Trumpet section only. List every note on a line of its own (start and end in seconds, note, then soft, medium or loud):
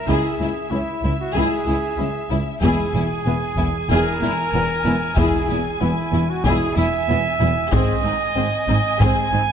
0.07 0.69 G#4 medium
0.70 1.18 E4 medium
1.19 1.35 F#4 medium
1.34 2.28 G#4 medium
2.62 3.86 G#4 medium
3.90 5.17 A#4 medium
5.17 5.80 G#4 medium
5.80 6.28 E4 medium
6.28 6.45 F#4 medium
6.45 6.77 G#4 medium
6.75 7.72 E5 medium
7.71 8.97 D#5 medium
8.99 9.52 G#5 loud